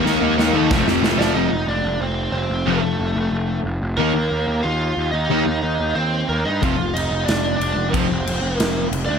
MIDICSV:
0, 0, Header, 1, 6, 480
1, 0, Start_track
1, 0, Tempo, 328587
1, 72, Time_signature, 4, 2, 24, 8
1, 13423, End_track
2, 0, Start_track
2, 0, Title_t, "Lead electric guitar"
2, 0, Program_c, 0, 29
2, 27, Note_on_c, 0, 70, 90
2, 56, Note_on_c, 0, 58, 80
2, 732, Note_off_c, 0, 58, 0
2, 790, Note_off_c, 0, 70, 0
2, 798, Note_on_c, 0, 69, 78
2, 810, Note_on_c, 0, 57, 65
2, 1240, Note_off_c, 0, 69, 0
2, 1246, Note_off_c, 0, 57, 0
2, 1733, Note_on_c, 0, 74, 106
2, 1763, Note_on_c, 0, 62, 89
2, 1958, Note_off_c, 0, 74, 0
2, 1964, Note_on_c, 0, 75, 110
2, 1969, Note_off_c, 0, 62, 0
2, 1975, Note_on_c, 0, 63, 79
2, 2422, Note_off_c, 0, 75, 0
2, 2427, Note_off_c, 0, 63, 0
2, 2461, Note_on_c, 0, 74, 102
2, 2476, Note_on_c, 0, 62, 75
2, 2918, Note_off_c, 0, 62, 0
2, 2937, Note_off_c, 0, 74, 0
2, 2943, Note_on_c, 0, 72, 101
2, 2949, Note_on_c, 0, 60, 76
2, 3376, Note_off_c, 0, 72, 0
2, 3384, Note_off_c, 0, 60, 0
2, 3394, Note_on_c, 0, 72, 89
2, 3402, Note_on_c, 0, 60, 70
2, 3860, Note_off_c, 0, 60, 0
2, 3887, Note_on_c, 0, 57, 65
2, 3894, Note_on_c, 0, 69, 85
2, 3906, Note_off_c, 0, 72, 0
2, 5280, Note_off_c, 0, 57, 0
2, 5283, Note_off_c, 0, 69, 0
2, 5800, Note_on_c, 0, 70, 91
2, 5811, Note_on_c, 0, 58, 65
2, 6722, Note_off_c, 0, 58, 0
2, 6760, Note_on_c, 0, 77, 99
2, 6777, Note_on_c, 0, 65, 82
2, 6805, Note_off_c, 0, 70, 0
2, 7453, Note_off_c, 0, 65, 0
2, 7464, Note_off_c, 0, 77, 0
2, 7470, Note_on_c, 0, 75, 95
2, 7513, Note_on_c, 0, 63, 75
2, 8655, Note_off_c, 0, 63, 0
2, 8692, Note_on_c, 0, 72, 95
2, 8729, Note_off_c, 0, 75, 0
2, 8731, Note_on_c, 0, 60, 73
2, 9169, Note_off_c, 0, 60, 0
2, 9179, Note_off_c, 0, 72, 0
2, 9185, Note_on_c, 0, 70, 85
2, 9231, Note_on_c, 0, 58, 68
2, 9426, Note_on_c, 0, 75, 84
2, 9436, Note_off_c, 0, 70, 0
2, 9437, Note_off_c, 0, 58, 0
2, 9484, Note_on_c, 0, 63, 67
2, 9661, Note_on_c, 0, 77, 95
2, 9677, Note_off_c, 0, 75, 0
2, 9684, Note_off_c, 0, 63, 0
2, 9725, Note_on_c, 0, 65, 81
2, 10133, Note_on_c, 0, 75, 91
2, 10148, Note_off_c, 0, 65, 0
2, 10162, Note_off_c, 0, 77, 0
2, 10190, Note_on_c, 0, 63, 71
2, 10590, Note_off_c, 0, 75, 0
2, 10596, Note_on_c, 0, 74, 89
2, 10620, Note_off_c, 0, 63, 0
2, 10655, Note_on_c, 0, 62, 78
2, 11028, Note_off_c, 0, 74, 0
2, 11045, Note_on_c, 0, 74, 91
2, 11092, Note_off_c, 0, 62, 0
2, 11120, Note_on_c, 0, 62, 71
2, 11524, Note_off_c, 0, 74, 0
2, 11539, Note_on_c, 0, 72, 93
2, 11564, Note_off_c, 0, 62, 0
2, 11591, Note_on_c, 0, 60, 79
2, 12532, Note_off_c, 0, 72, 0
2, 12532, Note_on_c, 0, 70, 93
2, 12949, Note_off_c, 0, 70, 0
2, 12975, Note_off_c, 0, 60, 0
2, 13227, Note_on_c, 0, 74, 95
2, 13288, Note_on_c, 0, 62, 74
2, 13423, Note_off_c, 0, 62, 0
2, 13423, Note_off_c, 0, 74, 0
2, 13423, End_track
3, 0, Start_track
3, 0, Title_t, "Distorted electric guitar"
3, 0, Program_c, 1, 30
3, 0, Note_on_c, 1, 51, 101
3, 0, Note_on_c, 1, 58, 100
3, 0, Note_on_c, 1, 63, 109
3, 522, Note_off_c, 1, 51, 0
3, 537, Note_off_c, 1, 58, 0
3, 550, Note_off_c, 1, 63, 0
3, 13423, End_track
4, 0, Start_track
4, 0, Title_t, "Distorted electric guitar"
4, 0, Program_c, 2, 30
4, 70, Note_on_c, 2, 63, 109
4, 91, Note_on_c, 2, 58, 104
4, 95, Note_on_c, 2, 51, 92
4, 295, Note_off_c, 2, 51, 0
4, 300, Note_off_c, 2, 58, 0
4, 313, Note_on_c, 2, 51, 90
4, 316, Note_off_c, 2, 63, 0
4, 318, Note_on_c, 2, 58, 101
4, 334, Note_on_c, 2, 63, 101
4, 541, Note_off_c, 2, 63, 0
4, 548, Note_off_c, 2, 51, 0
4, 551, Note_off_c, 2, 58, 0
4, 558, Note_on_c, 2, 63, 98
4, 566, Note_on_c, 2, 51, 73
4, 568, Note_on_c, 2, 58, 84
4, 764, Note_off_c, 2, 51, 0
4, 777, Note_off_c, 2, 58, 0
4, 781, Note_on_c, 2, 51, 88
4, 783, Note_off_c, 2, 63, 0
4, 795, Note_on_c, 2, 58, 89
4, 800, Note_on_c, 2, 63, 93
4, 1011, Note_off_c, 2, 51, 0
4, 1018, Note_off_c, 2, 58, 0
4, 1021, Note_off_c, 2, 63, 0
4, 1040, Note_on_c, 2, 41, 102
4, 1042, Note_on_c, 2, 48, 101
4, 1042, Note_on_c, 2, 53, 110
4, 1244, Note_off_c, 2, 53, 0
4, 1254, Note_off_c, 2, 48, 0
4, 1258, Note_off_c, 2, 41, 0
4, 1262, Note_on_c, 2, 53, 103
4, 1271, Note_on_c, 2, 48, 93
4, 1275, Note_on_c, 2, 41, 74
4, 1493, Note_off_c, 2, 41, 0
4, 1498, Note_off_c, 2, 53, 0
4, 1500, Note_off_c, 2, 48, 0
4, 1510, Note_on_c, 2, 41, 82
4, 1515, Note_on_c, 2, 53, 93
4, 1518, Note_on_c, 2, 48, 88
4, 1717, Note_off_c, 2, 53, 0
4, 1728, Note_off_c, 2, 48, 0
4, 1729, Note_off_c, 2, 41, 0
4, 1735, Note_on_c, 2, 53, 94
4, 1746, Note_on_c, 2, 48, 90
4, 1747, Note_on_c, 2, 41, 76
4, 1964, Note_off_c, 2, 41, 0
4, 1967, Note_off_c, 2, 53, 0
4, 1973, Note_off_c, 2, 48, 0
4, 1982, Note_on_c, 2, 41, 92
4, 1993, Note_on_c, 2, 48, 98
4, 1996, Note_on_c, 2, 53, 95
4, 2177, Note_off_c, 2, 41, 0
4, 2183, Note_off_c, 2, 48, 0
4, 2184, Note_off_c, 2, 53, 0
4, 3905, Note_on_c, 2, 48, 94
4, 3911, Note_on_c, 2, 41, 93
4, 3919, Note_on_c, 2, 53, 106
4, 4099, Note_off_c, 2, 48, 0
4, 4101, Note_off_c, 2, 41, 0
4, 4105, Note_off_c, 2, 53, 0
4, 5835, Note_on_c, 2, 51, 89
4, 5839, Note_on_c, 2, 58, 93
4, 5850, Note_on_c, 2, 63, 89
4, 6024, Note_off_c, 2, 51, 0
4, 6026, Note_off_c, 2, 58, 0
4, 6032, Note_off_c, 2, 63, 0
4, 7746, Note_on_c, 2, 51, 103
4, 7755, Note_on_c, 2, 63, 104
4, 7758, Note_on_c, 2, 58, 103
4, 7941, Note_off_c, 2, 51, 0
4, 7945, Note_off_c, 2, 63, 0
4, 7947, Note_off_c, 2, 58, 0
4, 9673, Note_on_c, 2, 41, 95
4, 9684, Note_on_c, 2, 48, 101
4, 9687, Note_on_c, 2, 53, 104
4, 9865, Note_off_c, 2, 41, 0
4, 9871, Note_off_c, 2, 48, 0
4, 9872, Note_off_c, 2, 53, 0
4, 11596, Note_on_c, 2, 41, 99
4, 11602, Note_on_c, 2, 48, 91
4, 11613, Note_on_c, 2, 53, 109
4, 11787, Note_off_c, 2, 41, 0
4, 11791, Note_off_c, 2, 48, 0
4, 11796, Note_off_c, 2, 53, 0
4, 13423, End_track
5, 0, Start_track
5, 0, Title_t, "Picked electric bass"
5, 0, Program_c, 3, 34
5, 71, Note_on_c, 3, 39, 101
5, 296, Note_off_c, 3, 39, 0
5, 317, Note_on_c, 3, 39, 92
5, 532, Note_off_c, 3, 39, 0
5, 540, Note_on_c, 3, 39, 98
5, 769, Note_off_c, 3, 39, 0
5, 779, Note_on_c, 3, 39, 94
5, 1042, Note_on_c, 3, 29, 96
5, 1063, Note_off_c, 3, 39, 0
5, 1245, Note_off_c, 3, 29, 0
5, 1254, Note_on_c, 3, 29, 83
5, 1485, Note_off_c, 3, 29, 0
5, 1501, Note_on_c, 3, 29, 94
5, 1715, Note_off_c, 3, 29, 0
5, 1724, Note_on_c, 3, 29, 89
5, 1957, Note_off_c, 3, 29, 0
5, 1962, Note_on_c, 3, 29, 87
5, 2169, Note_off_c, 3, 29, 0
5, 2214, Note_on_c, 3, 29, 93
5, 2416, Note_off_c, 3, 29, 0
5, 2449, Note_on_c, 3, 29, 90
5, 2653, Note_off_c, 3, 29, 0
5, 2681, Note_on_c, 3, 29, 92
5, 2888, Note_off_c, 3, 29, 0
5, 2916, Note_on_c, 3, 29, 83
5, 3321, Note_off_c, 3, 29, 0
5, 3392, Note_on_c, 3, 29, 89
5, 3602, Note_off_c, 3, 29, 0
5, 3651, Note_on_c, 3, 29, 79
5, 3853, Note_off_c, 3, 29, 0
5, 3881, Note_on_c, 3, 29, 97
5, 4088, Note_off_c, 3, 29, 0
5, 4126, Note_on_c, 3, 29, 82
5, 4331, Note_off_c, 3, 29, 0
5, 4375, Note_on_c, 3, 29, 89
5, 4576, Note_off_c, 3, 29, 0
5, 4600, Note_on_c, 3, 29, 96
5, 4807, Note_off_c, 3, 29, 0
5, 4841, Note_on_c, 3, 29, 90
5, 5244, Note_off_c, 3, 29, 0
5, 5315, Note_on_c, 3, 29, 87
5, 5525, Note_off_c, 3, 29, 0
5, 5575, Note_on_c, 3, 29, 89
5, 5777, Note_off_c, 3, 29, 0
5, 5813, Note_on_c, 3, 39, 85
5, 6015, Note_off_c, 3, 39, 0
5, 6048, Note_on_c, 3, 39, 88
5, 6252, Note_off_c, 3, 39, 0
5, 6300, Note_on_c, 3, 39, 91
5, 6500, Note_off_c, 3, 39, 0
5, 6538, Note_on_c, 3, 39, 91
5, 6739, Note_off_c, 3, 39, 0
5, 6791, Note_on_c, 3, 39, 91
5, 7182, Note_off_c, 3, 39, 0
5, 7262, Note_on_c, 3, 39, 84
5, 7461, Note_off_c, 3, 39, 0
5, 7488, Note_on_c, 3, 39, 79
5, 7693, Note_off_c, 3, 39, 0
5, 7741, Note_on_c, 3, 39, 89
5, 7941, Note_off_c, 3, 39, 0
5, 7980, Note_on_c, 3, 39, 85
5, 8180, Note_off_c, 3, 39, 0
5, 8226, Note_on_c, 3, 39, 91
5, 8424, Note_off_c, 3, 39, 0
5, 8467, Note_on_c, 3, 39, 91
5, 8665, Note_off_c, 3, 39, 0
5, 8700, Note_on_c, 3, 39, 79
5, 9097, Note_off_c, 3, 39, 0
5, 9188, Note_on_c, 3, 39, 88
5, 9386, Note_off_c, 3, 39, 0
5, 9421, Note_on_c, 3, 43, 80
5, 9622, Note_off_c, 3, 43, 0
5, 9679, Note_on_c, 3, 29, 91
5, 9873, Note_off_c, 3, 29, 0
5, 9900, Note_on_c, 3, 29, 87
5, 10102, Note_off_c, 3, 29, 0
5, 10148, Note_on_c, 3, 29, 84
5, 10346, Note_off_c, 3, 29, 0
5, 10387, Note_on_c, 3, 29, 81
5, 10586, Note_off_c, 3, 29, 0
5, 10639, Note_on_c, 3, 29, 92
5, 11029, Note_off_c, 3, 29, 0
5, 11103, Note_on_c, 3, 29, 80
5, 11304, Note_off_c, 3, 29, 0
5, 11343, Note_on_c, 3, 29, 83
5, 11544, Note_off_c, 3, 29, 0
5, 11595, Note_on_c, 3, 29, 89
5, 11791, Note_off_c, 3, 29, 0
5, 11835, Note_on_c, 3, 29, 92
5, 12031, Note_off_c, 3, 29, 0
5, 12066, Note_on_c, 3, 29, 88
5, 12266, Note_off_c, 3, 29, 0
5, 12294, Note_on_c, 3, 29, 86
5, 12499, Note_off_c, 3, 29, 0
5, 12552, Note_on_c, 3, 29, 92
5, 12946, Note_off_c, 3, 29, 0
5, 13023, Note_on_c, 3, 29, 93
5, 13224, Note_off_c, 3, 29, 0
5, 13259, Note_on_c, 3, 38, 83
5, 13423, Note_off_c, 3, 38, 0
5, 13423, End_track
6, 0, Start_track
6, 0, Title_t, "Drums"
6, 91, Note_on_c, 9, 38, 68
6, 237, Note_off_c, 9, 38, 0
6, 574, Note_on_c, 9, 38, 93
6, 720, Note_off_c, 9, 38, 0
6, 1037, Note_on_c, 9, 36, 117
6, 1043, Note_on_c, 9, 38, 100
6, 1183, Note_off_c, 9, 36, 0
6, 1189, Note_off_c, 9, 38, 0
6, 1281, Note_on_c, 9, 38, 84
6, 1427, Note_off_c, 9, 38, 0
6, 1524, Note_on_c, 9, 38, 116
6, 1670, Note_off_c, 9, 38, 0
6, 1764, Note_on_c, 9, 38, 106
6, 1910, Note_off_c, 9, 38, 0
6, 9683, Note_on_c, 9, 36, 116
6, 9684, Note_on_c, 9, 49, 60
6, 9829, Note_off_c, 9, 36, 0
6, 9830, Note_off_c, 9, 49, 0
6, 10174, Note_on_c, 9, 49, 60
6, 10320, Note_off_c, 9, 49, 0
6, 10639, Note_on_c, 9, 49, 58
6, 10647, Note_on_c, 9, 38, 123
6, 10785, Note_off_c, 9, 49, 0
6, 10793, Note_off_c, 9, 38, 0
6, 11121, Note_on_c, 9, 49, 54
6, 11267, Note_off_c, 9, 49, 0
6, 11600, Note_on_c, 9, 36, 103
6, 11600, Note_on_c, 9, 49, 60
6, 11746, Note_off_c, 9, 36, 0
6, 11746, Note_off_c, 9, 49, 0
6, 12087, Note_on_c, 9, 49, 68
6, 12233, Note_off_c, 9, 49, 0
6, 12560, Note_on_c, 9, 49, 67
6, 12569, Note_on_c, 9, 38, 110
6, 12706, Note_off_c, 9, 49, 0
6, 12715, Note_off_c, 9, 38, 0
6, 13039, Note_on_c, 9, 49, 62
6, 13185, Note_off_c, 9, 49, 0
6, 13423, End_track
0, 0, End_of_file